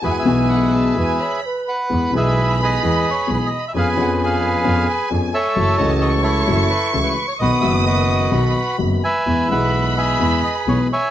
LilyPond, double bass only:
\new Staff \with { instrumentName = "Double bass" } { \clef bass \time 4/4 \key e \major \tempo 4 = 129 e,8 b,,4. e,8 r4. | e,8 b,,4. e,8 r8 b,,8 r8 | eis,8 eis,4. eis,8 r8 eis,8 r8 | fis,,8 cis,4. fis,,8 r8 cis,8 r8 |
b,,8 fis,,4. b,,8 r8 fis,,8 r8 | e,8 b,,4. e,8 r8 b,,8 r8 | }